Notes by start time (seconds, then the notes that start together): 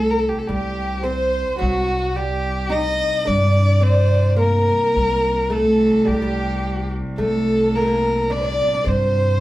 Already playing: C2 A4
0.11 A#4
0.19 A4
0.29 G4
0.39 A4
0.47 C2 G3 G4
1.04 C4 C5
1.59 C2 F#3 F#4
2.16 G3 G4
2.70 D#4 D#5
3.25 G2 D4 D5
3.81 C4 C5
4.36 A#3 A#4
4.96 C2
5.50 A3 A4
6.05 C2 G3 G4
6.14 A3
6.22 G3
7.18 C2 A3 A4
7.75 A#3 A#4
7.81 A3
7.88 A#3
8.30 D4 D5
8.37 D4
8.45 D4
8.52 D4
8.62 D4
8.68 D4
8.74 D4
8.84 G2 C4 C5